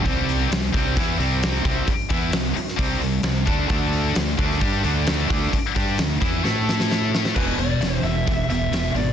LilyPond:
<<
  \new Staff \with { instrumentName = "Lead electric guitar" } { \time 4/4 \key e \minor \tempo 4 = 131 r1 | r1 | r1 | r1 |
b'8 d''4 e''4 e''4 d''8 | }
  \new Staff \with { instrumentName = "Distorted electric guitar" } { \clef bass \time 4/4 \key e \minor <c g c'>4 <c g>8 <c g c'>8 <e b e'>8 <c g c'>4 <c g c'>8 | r8 <e b e'>8 <c g>8 r8 <c g c'>8 <c g>8 <c g>8 <d a d'>8 | <d a d'>4 <d a>8 <d a d'>8 <g d' g'>8 <d a d'>4 <d a d'>8 | r8 <g d' g'>8 <d a>8 <e b e'>8 <a e' a'>2 |
<e, b, e>8 <e, b,>8 <e, b,>8 <e, b,>8 <e, b,>8 <e, b,>8 <e, b,>8 <e, b,>8 | }
  \new Staff \with { instrumentName = "Distorted electric guitar" } { \clef bass \time 4/4 \key e \minor <c g c'>4 <c g>8 <c g c'>8 <e b e'>8 <c g c'>4 <c g c'>8 | r8 <e b e'>8 <c g>8 r8 <c g c'>8 <c g>8 <c g>8 <d a d'>8 | <d a d'>4 <d a>8 <d a d'>8 <g d' g'>8 <d a d'>4 <d a d'>8 | r8 <g d' g'>8 <d a>8 <e b e'>8 <a e' a'>2 |
<e, b, e>8 <e, b,>8 <e, b,>8 <e, b,>8 <e, b,>8 <e, b,>8 <e, b,>8 <e, b,>8 | }
  \new Staff \with { instrumentName = "Fingered electric bass" } { \clef bass \time 4/4 \key e \minor c,4 c,8 c,8 e,8 c,4 c,8 | r8 e,8 c,8 r8 c,8 c,8 c,8 d,8 | d,4 d,8 d,8 g,8 d,4 d,8 | r8 g,8 d,8 e,8 a,2 |
e,,8 e,,8 e,,8 e,,8 e,,8 e,,8 e,,8 gis,,8 | }
  \new DrumStaff \with { instrumentName = "Drums" } \drummode { \time 4/4 <hho bd>8 hho8 <hho sn>8 <hho bd>8 <hho bd>8 hho8 <hho sn>8 <hho bd>8 | <hho bd>8 <hho bd>8 <hho sn>8 hho16 sn16 <hho bd>8 hho8 <hho sn>8 <hho bd>8 | <hho bd>8 hho8 <hho sn>8 <hho bd>16 sn16 <hho bd>8 hho8 <hho sn>8 <hho bd>8 | <hho bd>8 <hho bd>8 <hho sn>8 <hho bd>8 sn8 sn16 sn16 sn8 sn16 sn16 |
<cymc bd>8 hho8 <hho sn>8 hho8 <hho bd>8 hho8 <hho sn>8 hho8 | }
>>